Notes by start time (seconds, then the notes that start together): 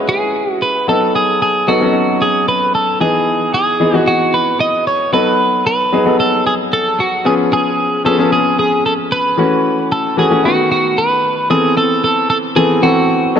Already playing: G#3 C#4 E4 F#4 B4
0.09 G#4
0.52 F#4
0.62 B4
0.88 F#3 B3 D#4 A4
1.15 G#4
1.42 G#4
1.67 F#3 B3 D#4 F#4 A4
1.81 F#3 B3 C#4 A4
1.88 D#4
2.22 G#4
2.48 B4
2.75 A4
3.00 E3 B3 D#4 G#4
3.54 G#4
3.80 E3 B3 D#4 G#4
3.93 E3 B3 D#4 F#4
3.97 F#4
4.08 F#4
4.34 B4
4.61 D#5
4.87 C#5
5.13 F#3 B3 D#4 A4 B4
5.67 B4
5.92 F#3 B3 D#4 G#4
6.06 F#3 B3 D#4 A4
6.20 A4
6.47 G#4
6.73 A4
7.00 F#4
7.25 F3 B3 C#4 G#4
7.53 G#4
8.05 F3 B3 C#4 G#4 A4
8.18 F3 B3 C#4 G#4
8.33 G#4
8.59 G#4
8.86 A4
9.12 B4
9.37 E3 A3 C#4 F#4
9.92 A4
10.17 E3 A3 C#4 F#4 G#4
10.30 E3 A3 C#4 F#4
10.44 D#3 A3 B3 F#4
10.72 F#4
10.98 B4
11.50 E3 B3 C4 G#4 A4
11.77 A4
12.04 A4
12.30 A4
12.56 E3 B3 C4 G#4 A4
12.82 E3 B3 C4 F#4 A4
13.35 F#3 B3 D#4 A4